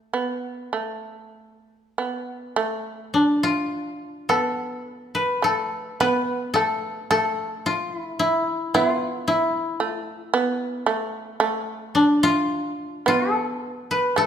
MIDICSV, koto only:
0, 0, Header, 1, 2, 480
1, 0, Start_track
1, 0, Tempo, 1214575
1, 1013, Time_signature, 4, 2, 24, 8
1, 1013, Tempo, 1140684
1, 2453, Tempo, 1107011
1, 3413, Tempo, 1073345
1, 4853, Tempo, 1102941
1, 6091, End_track
2, 0, Start_track
2, 0, Title_t, "Koto"
2, 0, Program_c, 0, 107
2, 1255, Note_on_c, 0, 62, 57
2, 1379, Note_on_c, 0, 65, 65
2, 1740, Note_on_c, 0, 69, 71
2, 2101, Note_on_c, 0, 71, 67
2, 2222, Note_off_c, 0, 69, 0
2, 2224, Note_on_c, 0, 69, 65
2, 2275, Note_off_c, 0, 62, 0
2, 2299, Note_off_c, 0, 65, 0
2, 2459, Note_off_c, 0, 71, 0
2, 2461, Note_on_c, 0, 71, 73
2, 2690, Note_off_c, 0, 69, 0
2, 2692, Note_on_c, 0, 69, 73
2, 2937, Note_off_c, 0, 69, 0
2, 2939, Note_on_c, 0, 69, 77
2, 3179, Note_on_c, 0, 65, 70
2, 3231, Note_off_c, 0, 71, 0
2, 3305, Note_off_c, 0, 65, 0
2, 3305, Note_on_c, 0, 64, 70
2, 3411, Note_off_c, 0, 64, 0
2, 3411, Note_on_c, 0, 64, 69
2, 3656, Note_off_c, 0, 64, 0
2, 3656, Note_on_c, 0, 64, 70
2, 3710, Note_off_c, 0, 64, 0
2, 3710, Note_on_c, 0, 65, 70
2, 3775, Note_off_c, 0, 69, 0
2, 3894, Note_on_c, 0, 64, 67
2, 3921, Note_off_c, 0, 65, 0
2, 4149, Note_off_c, 0, 64, 0
2, 4149, Note_on_c, 0, 65, 67
2, 4203, Note_off_c, 0, 65, 0
2, 4203, Note_on_c, 0, 64, 67
2, 4288, Note_off_c, 0, 64, 0
2, 4288, Note_on_c, 0, 65, 67
2, 4342, Note_off_c, 0, 65, 0
2, 4342, Note_on_c, 0, 64, 67
2, 4905, Note_off_c, 0, 64, 0
2, 5083, Note_on_c, 0, 62, 66
2, 5206, Note_on_c, 0, 65, 80
2, 5575, Note_off_c, 0, 65, 0
2, 5575, Note_on_c, 0, 65, 81
2, 5688, Note_off_c, 0, 65, 0
2, 5688, Note_on_c, 0, 69, 81
2, 5937, Note_on_c, 0, 71, 69
2, 6051, Note_off_c, 0, 69, 0
2, 6052, Note_on_c, 0, 69, 74
2, 6091, Note_off_c, 0, 62, 0
2, 6091, Note_off_c, 0, 69, 0
2, 6091, Note_off_c, 0, 71, 0
2, 6091, End_track
0, 0, End_of_file